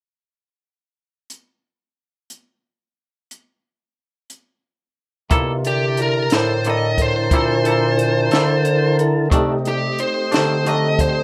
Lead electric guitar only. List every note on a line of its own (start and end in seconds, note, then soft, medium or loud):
5.67 5.98 G4 medium
6.02 6.32 A#4 medium
6.34 6.65 C5 medium
6.70 7.00 D#5 medium
7.02 8.96 C5 medium
9.68 9.99 G4 medium
10.00 10.32 C5 medium
10.35 10.66 C5 medium
10.68 10.99 D#5 medium
11.00 11.23 C5 medium